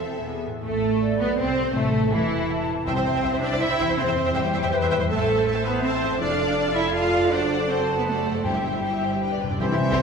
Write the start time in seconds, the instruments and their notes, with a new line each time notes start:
Already playing: double bass section E1, cello section E2, harp C4 E4 A4, french horn section C4 A4, viola section C4 A4, violin section A4 E5
0.05 harp E2
0.09 harp B3
0.14 harp E4
0.18 harp G#4
0.23 double bass section E1, cello section E2, viola section B3 G#4, french horn section B3 G#4
0.45 harp A2
0.50 harp C4
0.54 harp E4
0.58 harp A4
0.63 double bass section A1, cello section A3, viola section A3, violin section A3 A4, french horn section A3
1.01 flute D5
1.19 double bass section B1, cello section B3, violin section B3 B4, viola section B3, french horn section B3
1.38 double bass section C2, viola section C4, violin section C4 C5, cello section C4, french horn section C4, flute C5
1.58 harp C3
1.63 harp C4
1.67 harp E4
1.72 violin section A3, viola section A3, cello section A3, harp A4
1.76 double bass section A1, timpani C3, french horn section A3, violin section A4, flute E5
2.12 double bass section E1, cello section E3, viola section E3, french horn section E3, violin section E4
2.51 flute A5
2.69 harp C3
2.73 harp C4
2.78 harp E4
2.83 harp G4
2.87 double bass section C2, timpani C3, cello section C4, french horn section E4 C5, viola section C5 E5, violin section C5 G5, flute G5
2.96 double bass section C2, viola section C5 E5, violin section G5
3.05 double bass section C2, viola section C5, violin section E5
3.14 double bass section C2, viola section C5 E5, violin section G5
3.23 double bass section C2, viola section C5 E5, flute E5, violin section G5
3.33 double bass section C2, viola section C5, violin section E5
3.42 double bass section C2, cello section D4, viola section C5 E5, violin section D5 G5
3.51 double bass section C2, viola section C5 E5, violin section G5
3.60 double bass section C2, cello section E4, viola section C5, violin section E5
3.70 double bass section C2, viola section C5 E5, violin section G5
3.79 double bass section C2, harp E3, viola section C5 E5, violin section G5
3.84 harp C4, violin section E5
3.89 double bass section C2, harp E4, viola section C5
3.93 harp G4, violin section G5
3.98 double bass section E2, cello section C4, viola section C5 E5, flute C5, violin section C5
4.07 double bass section E2, viola section C5 E5, violin section G5
4.16 double bass section E2, viola section C5, violin section E5
4.24 double bass section E2, viola section C5 E5, violin section G5
4.34 double bass section E2, cello section G3, violin section G4 G5, flute C5, viola section C5 E5
4.44 double bass section E2, viola section C5, violin section E5
4.53 double bass section E2, viola section C5 E5, violin section G5
4.62 double bass section E2, viola section C5 E5, violin section G5
4.71 double bass section E2, flute B4, viola section C5, violin section E5
4.81 double bass section E2, viola section C5 E5, violin section G5
4.90 double bass section E2, harp A2, viola section C5 E5, violin section G5
4.96 harp A3, violin section E5
5.00 double bass section E2, harp E4, viola section C5
5.05 harp C5
5.09 double bass section A1, cello section A3, french horn section E4 C5, violin section A4 A5, flute A4, viola section A4 E5
5.18 viola section C5 A5, violin section E5
5.27 viola section A4 E5, violin section A5
5.37 viola section C5 A5, violin section E5
5.45 viola section A4 E5, flute C5, violin section A5
5.55 viola section C5 A5, violin section E5
5.64 cello section B3, viola section A4 E5, violin section B4 A5
5.74 viola section C5 A5, violin section E5
5.83 cello section C4, viola section A4 E5, violin section C5 A5
5.92 viola section C5 A5, violin section E5
6.02 harp F2, viola section A4 E5, violin section A5
6.06 harp A3
6.11 harp D4, viola section C5 A5, violin section E5
6.16 harp D5
6.20 double bass section F1, cello section D4, viola section F4 D5, french horn section A4 D5, violin section D5 A5, flute D5
6.30 viola section A4 F5, violin section F5
6.39 viola section F4 D5, violin section A5
6.48 viola section A4 F5, violin section F5
6.58 viola section F4 D5, violin section A5
6.66 viola section A4 F5, violin section F5
6.75 cello section E4, viola section F4 D5, violin section E5 A5
6.85 viola section A4 F5, violin section F5
6.94 cello section F4, viola section F4 D5, violin section F5 A5
7.04 viola section A4 F5, violin section F5
7.13 harp F#2, viola section F4 D5, violin section A5
7.18 harp A3, violin section F5
7.22 harp D4, viola section A4 F5
7.27 harp C5, french horn section C5
7.31 double bass section F#1, cello section D4, viola section F#4 C5, violin section D5 F#5
7.41 viola section A4 D5, violin section D5
7.50 viola section F#4 C5, violin section F#5
7.60 viola section A4 D5, violin section D5
7.69 cello section C4, viola section F#4 C5, violin section C5 F#5, flute A5
7.78 viola section A4 D5, violin section D5
7.88 viola section F#4 C5, violin section F#5
7.97 cello section B3, viola section A4 D5, violin section B4 D5
8.06 cello section A3, viola section F#4 C5, violin section A4 F#5
8.16 viola section A4 D5, violin section D5
8.25 harp G2, viola section F#4 C5, violin section F#5
8.31 harp G3, viola section A4 D5, violin section D5
8.35 harp E4
8.40 harp C5
8.44 double bass section G1, timpani G2, cello section G3, viola section E4 C5, french horn section E4, violin section G4 G5, flute G5
8.54 viola section G4 E5, violin section E5
8.64 viola section E4 C5, violin section G5
8.73 viola section G4 E5, violin section E5
8.83 viola section E4 C5, violin section G5
8.92 viola section G4 E5, violin section E5
9.01 harp G2, viola section E4 C5, violin section G5
9.08 harp G3, viola section G4 E5, violin section E5
9.13 harp D4
9.17 harp B4
9.21 timpani G2, viola section D4 B4, french horn section G4 B4, violin section G5
9.30 timpani G2, viola section G4 D5, violin section D5
9.37 timpani G2, viola section D4 B4
9.41 timpani G2, harp C3, violin section G5
9.47 timpani G2, harp G3, viola section G4 D5, violin section D5
9.52 harp E4
9.56 french horn section E3, harp C5, violin section E5
9.60 double bass section C2, timpani C3, bassoon E3, cello section E3, trombone section G3 C4, viola section C4 E4, violin section G4 C5, oboe C5
9.71 double bass section C2, viola section C4 E4, violin section E4 G4
9.91 double bass section C2, viola section C4 E4, violin section G4 C5